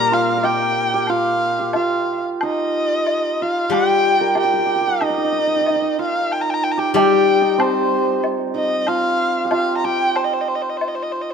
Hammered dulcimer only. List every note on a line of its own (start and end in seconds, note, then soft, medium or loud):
0.00 0.58 C4 medium
0.00 1.47 D#4 medium
0.00 0.11 F4 medium
0.00 0.43 G4 medium
0.00 0.37 A#4 medium
0.12 1.09 F4 medium
0.37 3.20 A#4 medium
0.44 0.93 G4 medium
0.94 1.59 G4 medium
1.09 1.75 F4 medium
1.59 3.73 G4 medium
1.75 3.41 F4 medium
2.43 5.01 D#4 medium
3.42 5.98 F4 medium
3.73 4.35 G4 medium
4.21 7.04 A#4 medium
4.35 4.44 G4 medium
4.44 4.53 G4 medium
4.53 4.59 G4 medium
4.59 4.66 G4 soft
4.66 4.75 G4 medium
4.75 4.81 G4 medium
4.81 4.87 G4 medium
4.88 6.77 G4 medium
5.01 5.10 D#4 medium
5.10 5.17 D#4 soft
5.18 5.24 D#4 soft
5.24 5.32 D#4 soft
5.32 5.39 D#4 soft
5.39 5.47 D#4 soft
5.47 5.55 D#4 soft
5.56 5.61 D#4 soft
5.61 5.70 D#4 soft
5.70 5.75 D#4 soft
5.76 5.81 D#4 medium
5.82 7.41 D#4 soft
5.99 8.87 F4 soft
6.78 6.95 G4 medium
6.95 9.44 G4 medium
7.42 8.54 D#4 medium
7.58 11.34 C4 medium
8.54 11.34 D#4 medium
8.88 9.51 F4 medium
9.45 9.84 G4 medium
9.51 11.34 F4 medium
9.84 11.34 G4 medium